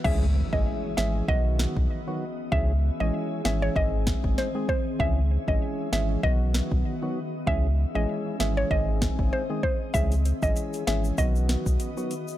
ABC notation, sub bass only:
X:1
M:4/4
L:1/16
Q:"Swing 16ths" 1/4=97
K:C#m
V:1 name="Sub bass" clef=bass
C,,3 A,,, z2 G,,,2 B,,,3 B,,, z4 | C,,3 A,,, z2 G,,,2 G,,,3 G,,, z4 | C,,3 A,,, z2 G,,,2 B,,,3 B,,, z4 | C,,3 A,,, z2 G,,,2 G,,,3 G,,, z4 |
C,,3 A,,, z2 G,,,2 B,,,3 B,,, z4 |]